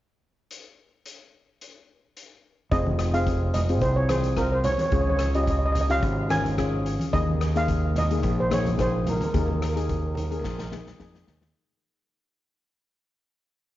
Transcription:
0.51 closed hi-hat
1.06 closed hi-hat
1.61 closed hi-hat
2.17 closed hi-hat
2.71 fingered electric bass F1, steel pan C4 F4 G#4 D#5, kick, closed hi-hat
2.87 high conga
2.99 cross-stick, closed hi-hat
3.14 steel pan C4 F4 G#4 F5, closed hi-hat
3.27 kick, closed hi-hat
3.54 steel pan D#5, closed hi-hat, low conga
3.69 steel pan C4 F4 G#4, closed hi-hat
3.81 fingered electric bass C2, steel pan C5, kick, closed hi-hat
3.96 steel pan C#5
4.09 steel pan C4 F4 G#4 C5, cross-stick, closed hi-hat, high conga
4.24 closed hi-hat
4.37 steel pan C4 F4 A#4, kick, cross-stick, closed hi-hat
4.52 steel pan C5
4.64 steel pan C#5, closed hi-hat, low conga
4.72 steel pan C#5
4.78 steel pan C#5, closed hi-hat, high conga
4.86 steel pan C#5
4.92 fingered electric bass C#2, steel pan C#4 F4 G#4 C#5, kick, closed hi-hat
5.01 steel pan C#5
5.07 steel pan C#5, high conga
5.17 steel pan C#5, cross-stick, closed hi-hat
5.34 steel pan C#4 F4 G4 D#5, closed hi-hat
5.44 steel pan D#5, kick, closed hi-hat
5.50 steel pan D#5
5.59 steel pan D#5
5.65 steel pan D#5
5.72 steel pan D#5, closed hi-hat, low conga
5.81 steel pan D#5
5.89 steel pan C#4 F4 G4 F5, closed hi-hat
6.02 fingered electric bass G#1, kick, closed hi-hat
6.29 steel pan C#4 F4 A#4 G#5, cross-stick, closed hi-hat, high conga
6.44 closed hi-hat, low conga
6.58 steel pan C#4 F4 G#4, kick, cross-stick, closed hi-hat
6.86 closed hi-hat
6.99 closed hi-hat, high conga
7.13 fingered electric bass D#2, steel pan A#3 D#4 G#4 D#5, kick, closed hi-hat
7.27 high conga
7.41 cross-stick, closed hi-hat
7.55 steel pan A#3 D#4 G#4 F5, closed hi-hat
7.68 kick, closed hi-hat
7.96 steel pan D#5, closed hi-hat, low conga
8.11 steel pan A#3 D#4 G#4, closed hi-hat
8.23 fingered electric bass A#1, kick, closed hi-hat
8.40 steel pan C5
8.51 steel pan A#3 D#4 G#4 C#5, cross-stick, closed hi-hat, high conga
8.65 closed hi-hat, low conga
8.78 steel pan A#3 D#4 G#4 C5, kick, cross-stick, closed hi-hat
9.06 steel pan A#4, closed hi-hat, low conga
9.17 steel pan A#4, high conga
9.21 steel pan A#4, closed hi-hat
9.30 steel pan A#4
9.34 fingered electric bass D#2, steel pan A#3 D#4 G#4 A#4, kick, closed hi-hat
9.46 steel pan A#4, high conga
9.55 steel pan A#4
9.61 steel pan A#4, cross-stick, closed hi-hat
9.69 steel pan A#4
9.75 steel pan A#3 D#4 G#4 A#4, closed hi-hat
9.84 steel pan A#4
9.89 steel pan A#4, kick, closed hi-hat
9.96 steel pan A#4
10.07 steel pan A#4
10.14 steel pan A#4, closed hi-hat, low conga
10.20 steel pan A#4
10.30 steel pan A#3 D#4 G#4 A#4, closed hi-hat
10.37 steel pan A#4
10.41 fingered electric bass A#1, steel pan A#4, kick, snare
10.50 steel pan A#4
10.58 steel pan A#4, snare
10.72 steel pan A#3 D#4 G#4, snare, high conga
10.86 snare, low conga
11.00 fingered electric bass F2, steel pan A#3 D#4 G#4, kick, snare
11.14 snare
11.27 fingered electric bass D#2, snare, low conga
11.42 snare, high conga

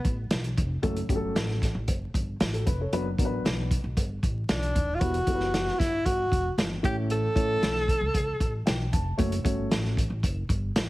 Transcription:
Already playing: tenor saxophone B3
0.05 upright bass A1, kick, closed hi-hat
0.31 upright bass B1, snare, closed hi-hat
0.44 closed hi-hat
0.57 upright bass F1, kick, closed hi-hat
0.82 upright bass F#1, upright piano F#3 A3 C#4 A4, kick, closed hi-hat
0.97 closed hi-hat
1.09 upright bass G1, upright piano F#3 A3 C#4 G4, kick, closed hi-hat
1.15 upright piano A4
1.35 upright bass A1, snare, closed hi-hat
1.50 snare
1.62 kick, snare, closed hi-hat
1.75 upright bass A1
1.88 upright bass F#1, kick, closed hi-hat
2.14 upright bass G1, kick, closed hi-hat
2.40 upright bass A1, snare, closed hi-hat
2.53 upright piano F#4 A4, closed hi-hat
2.66 upright bass F1, upright piano B4, kick, closed hi-hat
2.81 upright piano A4 C#5
2.93 upright bass F#1, upright piano F#3 B3 D4 B4, closed hi-hat
3.18 upright bass A1, upright piano F#3 B3 D4 A#4, kick, closed hi-hat
3.25 upright piano B4
3.45 upright bass B1, snare, closed hi-hat
3.71 kick, closed hi-hat
3.84 upright bass B1
3.97 upright bass G1, kick, closed hi-hat
4.23 upright bass A1, kick, closed hi-hat
4.49 upright bass B1, tenor saxophone D4, snare, closed hi-hat
4.63 closed hi-hat
4.76 upright bass D#1, kick, closed hi-hat
4.95 tenor saxophone F4
5.00 upright bass E1, upright piano G3 B3 E4 B4, tenor saxophone F#4, kick, closed hi-hat
5.14 closed hi-hat
5.27 upright bass F#1, upright piano G3 B3 E4 A4, kick, closed hi-hat
5.34 upright piano B4
5.40 snare
5.54 snare, closed hi-hat
5.67 snare
5.78 upright bass G1, tenor saxophone E4, kick, snare, closed hi-hat
6.06 upright bass G1, tenor saxophone F#4, kick, closed hi-hat
6.32 upright bass E1, kick, closed hi-hat
6.58 upright bass G1, snare, closed hi-hat
6.83 upright bass A1, upright piano A3 C#4 E4 C#5, tenor saxophone G4, kick, closed hi-hat
7.10 tenor saxophone A4, closed hi-hat
7.35 upright bass A1, upright piano A3 C#4 E4 C#5, kick, closed hi-hat
7.62 upright bass B1, snare, closed hi-hat
7.75 snare
7.88 kick, closed hi-hat
8.01 upright bass C#2
8.14 upright bass C#2, kick, closed hi-hat
8.40 upright bass A1, kick, closed hi-hat
8.66 upright bass B1, upright piano G5, snare, closed hi-hat
8.92 upright bass F1, upright piano A5, kick, closed hi-hat
9.17 upright bass F#1, upright piano A3 C#4 F#4 C#5, kick, closed hi-hat
9.32 closed hi-hat
9.44 upright bass G1, upright piano A3 C#4 F#4 C#5, kick, closed hi-hat
9.71 upright bass A1, snare, closed hi-hat
9.85 snare
9.97 kick, closed hi-hat
10.10 upright bass A1
10.23 upright bass F#1, kick, closed hi-hat
10.49 upright bass G1, kick, closed hi-hat
10.76 upright bass A1, snare, closed hi-hat

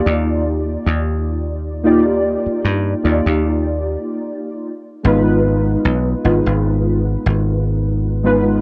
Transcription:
Already playing: synth keys A#3 D#4 F4 G4 D5
0.06 slap bass D#2
0.86 slap bass D#2
1.83 synth keys A#3 D#4 F4 G4 D5
2.46 muted slap bass stroke
2.65 slap bass G2
3.03 slap bass D#2, synth keys A#3 D#4 F4 G4 D5
3.26 slap bass D#2
5.03 slap bass G#1, synth keys G#3 B3 D#4 F4 B4
5.85 slap bass B1
6.24 slap bass G#1, synth keys G#3 B3 D#4 F4 B4
6.46 slap bass G#1
7.26 slap bass G#1
8.23 synth keys G#3 B3 D#4 F4 B4

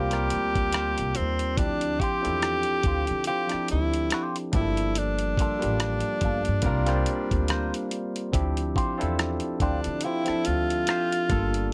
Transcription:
Already playing: upright bass C2, tine electric piano G3 A#3 C4 F4 A#4, clean electric guitar F4 A#4 C5, tenor saxophone G4
0.11 tine electric piano G3 A#3 C4 F4 A#4, cross-stick, closed hi-hat
0.30 upright bass D2, closed hi-hat
0.55 kick, closed hi-hat
0.72 clean electric guitar F4 A#4 C5, cross-stick, closed hi-hat
0.98 upright bass C2, closed hi-hat
1.15 tenor saxophone C4, closed hi-hat
1.19 upright bass D#2
1.39 closed hi-hat
1.56 upright bass D2, tine electric piano F3 C4 D4 E4 G4, tenor saxophone D4, kick, closed hi-hat
1.81 closed hi-hat
2.00 clean electric guitar F4 G4 C5, tenor saxophone G4, kick, closed hi-hat
2.21 tine electric piano C4 D4 E4 F4 A4, closed hi-hat
2.26 upright bass E2
2.42 cross-stick, closed hi-hat
2.63 closed hi-hat
2.83 upright bass D2, clean electric guitar F4 G4, kick, closed hi-hat
2.88 clean electric guitar C5
3.07 upright bass D3, closed hi-hat
3.24 clean electric guitar F4 G4, tenor saxophone G4, closed hi-hat
3.29 clean electric guitar C5
3.47 tine electric piano F3 C4 D4 E4 G4, closed hi-hat
3.52 muted upright bass stroke, cross-stick
3.68 tenor saxophone E4, closed hi-hat
3.72 upright bass D2
3.94 closed hi-hat
4.10 clean electric guitar F4 G4 C5, cross-stick, closed hi-hat
4.36 closed hi-hat
4.52 upright bass G1, tine electric piano F3 G3 A#3 D4 G4, tenor saxophone E4, kick, closed hi-hat
4.61 tine electric piano A4
4.77 closed hi-hat
4.95 tenor saxophone D4, closed hi-hat
5.19 closed hi-hat
5.37 clean electric guitar A#3 F4, kick, closed hi-hat
5.42 clean electric guitar A4
5.59 tine electric piano G3 A#3 D4 F4 G4, closed hi-hat
5.64 upright bass A1
5.80 cross-stick, closed hi-hat
6.00 closed hi-hat
6.21 upright bass G1, clean electric guitar A#3 F4, kick, closed hi-hat
6.26 clean electric guitar A4
6.45 upright bass G2, closed hi-hat
6.62 upright bass C2, tine electric piano G3 A#3 C4 F4 A#4, kick, closed hi-hat
6.66 clean electric guitar F4 A#4 C5
6.86 tine electric piano G3 A#3 C4 F4 C5, cross-stick, closed hi-hat
7.06 closed hi-hat
7.31 upright bass D2, kick, closed hi-hat
7.48 clean electric guitar F4 A#4 C5, cross-stick, closed hi-hat
7.74 closed hi-hat
7.91 closed hi-hat
8.16 closed hi-hat
8.32 upright bass D2, tine electric piano F3 C4 D4 E4 G4, kick, closed hi-hat
8.57 closed hi-hat
8.76 clean electric guitar F4 G4 C5, kick, closed hi-hat
8.98 tine electric piano C4 D4 E4 F4 A4, closed hi-hat
9.02 upright bass E2
9.19 cross-stick, closed hi-hat
9.40 closed hi-hat
9.60 upright bass D2, tenor saxophone D4, clean electric guitar F4 G4 C5, kick, closed hi-hat
9.84 upright bass D3, closed hi-hat
10.01 tenor saxophone E4, clean electric guitar F4, closed hi-hat
10.05 clean electric guitar G4 C5
10.24 tine electric piano F3 C4 D4 A4 E5, cross-stick, closed hi-hat
10.29 muted upright bass stroke
10.45 upright bass D2, tenor saxophone F4, closed hi-hat
10.70 closed hi-hat
10.87 clean electric guitar F4 G4 C5, cross-stick, closed hi-hat
11.12 closed hi-hat
11.29 upright bass G1, tine electric piano G3 A#3 D4 F4 A4, kick, closed hi-hat
11.54 closed hi-hat

